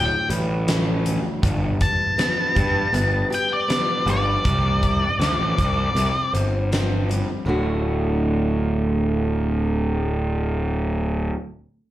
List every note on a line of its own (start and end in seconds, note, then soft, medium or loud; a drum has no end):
0.00 1.04 D2 medium
0.00 0.66 A2 medium
0.00 0.27 G5 medium
0.29 1.17 A1 medium
0.29 2.17 G3 medium
0.29 closed hi-hat medium
0.68 1.43 A2 medium
0.68 snare loud
0.68 closed hi-hat medium
1.05 1.42 D2 medium
1.05 closed hi-hat medium
1.43 1.72 G1 medium
1.43 3.31 G2 medium
1.43 kick loud
1.43 closed hi-hat medium
1.81 3.28 A5 medium
1.81 kick medium
1.81 closed hi-hat medium
2.18 2.92 B3 medium
2.18 snare medium
2.18 closed hi-hat medium
2.55 2.85 G2 medium
2.55 4.05 G3 medium
2.55 kick medium
2.55 closed hi-hat medium
2.93 3.22 G1 medium
2.93 3.67 B3 medium
2.93 closed hi-hat medium
3.30 4.44 G4 medium
3.30 closed hi-hat medium
3.35 3.51 G5 medium
3.53 4.06 D5 medium
3.68 4.44 B3 medium
3.68 snare medium
3.68 closed hi-hat medium
4.06 4.35 G1 loud
4.06 4.44 G3 medium
4.06 closed hi-hat medium
4.10 6.31 D5 medium
4.44 5.03 C2 medium
4.44 6.33 C3 medium
4.44 kick loud
4.44 closed hi-hat medium
4.83 kick medium
4.83 closed hi-hat medium
5.19 5.34 D2 medium
5.19 5.94 C4 medium
5.19 snare medium
5.19 closed hi-hat medium
5.38 5.53 A1 medium
5.58 5.87 C2 medium
5.58 7.08 G3 medium
5.58 kick medium
5.58 closed hi-hat medium
5.95 6.10 C2 medium
5.95 6.71 C4 medium
5.95 closed hi-hat medium
6.33 7.21 G1 medium
6.33 7.47 C5 medium
6.33 closed hi-hat medium
6.72 7.47 C4 medium
6.72 snare medium
6.72 closed hi-hat medium
7.09 7.46 G3 medium
7.09 closed hi-hat medium
7.46 11.30 D1 medium
7.46 11.33 D2 medium
7.46 11.34 A2 medium
7.46 11.35 D3 medium
7.46 11.36 A3 medium
7.46 11.37 F#4 medium